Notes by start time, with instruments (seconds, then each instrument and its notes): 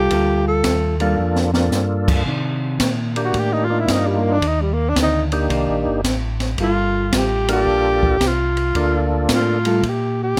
Already playing: tenor saxophone G4
0.10 tonewheel organ D2, hollow-body jazz guitar G3 A#3 F4 A4, kick, ride
0.48 tenor saxophone A4
0.64 tonewheel organ D#2, kick, snare, hi-hat pedal, ride
1.00 hollow-body jazz guitar G3 A#3 F4 A4, tonewheel organ A#3 D4 F4 A4, ride
1.18 tonewheel organ F2
1.36 snare
1.54 tonewheel organ A#3 D4 F4 A4, snare
1.71 tonewheel organ G2, snare, hi-hat pedal
2.08 kick, crash
2.26 tonewheel organ C3, hollow-body jazz guitar D#3 D4, kick
2.80 tonewheel organ A#2, kick, snare, hi-hat pedal, ride
3.16 tonewheel organ A#3 D4 G4, ride
3.25 tenor saxophone F#4
3.33 tonewheel organ A2, kick, ride
3.38 tenor saxophone G4
3.53 tenor saxophone D#4
3.64 tenor saxophone F4
3.70 tonewheel organ A#3 D4 D#4 F4
3.79 tenor saxophone E4
3.88 tonewheel organ G2, kick, snare, hi-hat pedal, ride
3.93 tenor saxophone D#4
4.06 tenor saxophone G3
4.18 tenor saxophone A#3
4.32 tenor saxophone D4
4.41 tonewheel organ D#2, kick, ride
4.47 tenor saxophone D#4
4.61 tenor saxophone G3
4.73 tenor saxophone A#3
4.89 tenor saxophone D4
4.96 tonewheel organ D2, hollow-body jazz guitar D#3 A#3 D4, kick, snare, hi-hat pedal, ride
5.02 tenor saxophone D#4
5.32 tonewheel organ A#3 D4 D#4 G4, ride
5.49 tonewheel organ C2, hollow-body jazz guitar D#3 A#3 D4, kick, ride
5.69 tonewheel organ A#1
5.86 tonewheel organ G1
6.04 tonewheel organ A1, kick, snare, hi-hat pedal, ride
6.40 snare, ride
6.58 tonewheel organ G1, hollow-body jazz guitar G3 A#3 F4 A4, kick, ride
6.63 tenor saxophone F4
7.12 tonewheel organ A1, kick, snare, hi-hat pedal, ride
7.18 tenor saxophone G4
7.48 tonewheel organ A#3 D4 F4 A4, tenor saxophone G4, ride
7.67 tonewheel organ A#1, kick
8.03 kick
8.20 tonewheel organ C2, kick, snare, hi-hat pedal, ride
8.27 tenor saxophone F4
8.57 ride
8.75 tonewheel organ D2 A#3 D4 F4 A4, kick, ride
9.29 tonewheel organ A2, kick, snare, hi-hat pedal, ride
9.35 tenor saxophone F4
9.65 hollow-body jazz guitar G3 A#3 F4 A4, ride
9.82 tonewheel organ A#2, kick, ride
9.88 tenor saxophone G4
10.23 tenor saxophone G4